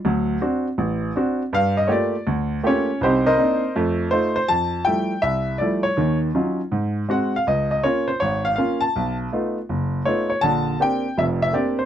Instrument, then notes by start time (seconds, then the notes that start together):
grand piano
0.05 D2 F#3
0.41 C4 D4 F#4
0.78 A1
1.16 C4 D4 F#4
1.53 G2 F5
1.77 D#5
1.87 A3 A#3 F4 G4 C#5
1.92 D5
2.27 D2
2.63 A3 A#3 F4 G4 C#5
2.68 C#4
3.01 C2 C4 D#4 G4 C5
3.26 D#4 A#4 C5 D#5
3.38 A#3 C4 D4 D#4
3.76 F2 A3
4.11 A3 D#4 F4 C5
4.36 C5
4.48 F2 A5
4.85 F3 G3 A3 E4 G5
5.22 C2 E5
5.58 F3 G3 A3 E4 D5
5.83 C#5
5.97 D#2 D#3
6.35 F#3 C#4 D#4 F4
6.72 G#2
7.09 G#3 C4 F#4 F#5
7.36 F5
7.47 C#2 D#5
7.71 D#5
7.83 A#3 C#4 F4 C#5
8.08 C5
8.20 G#1 C#5
8.45 F5
8.56 A#3 C#4 F4 F5
8.81 A5
8.96 B1
9.32 A3 B3 D#4 F4
9.69 F#1
10.05 A3 B3 D#4 F4 C#5
10.30 C#5
10.41 A#1 D3 A5
10.80 A#3 C4 D4 G4 G5
11.18 F1 F2 E5
11.42 E5
11.53 A#3 C4 D4 G4 D5
11.79 C5